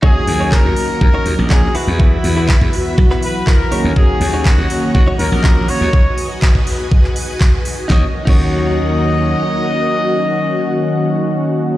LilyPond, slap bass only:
\new Staff \with { instrumentName = "Slap bass" } { \clef bass \time 4/4 \key ees \phrygian \tempo 4 = 122 r8 ees,8 r16 ees,16 r8 ees,16 r16 ees,16 bes,,8 r8 e,16~ | e,16 r16 e,8 r16 e,16 r8 b,,16 r4. ees,16 | r8 ees,8 r16 ees,16 r8 ees,16 r16 ees,16 bes,,8. r16 ees,16 | r1 |
ees,16 r8 ees,2~ ees,16 r4 | r1 | }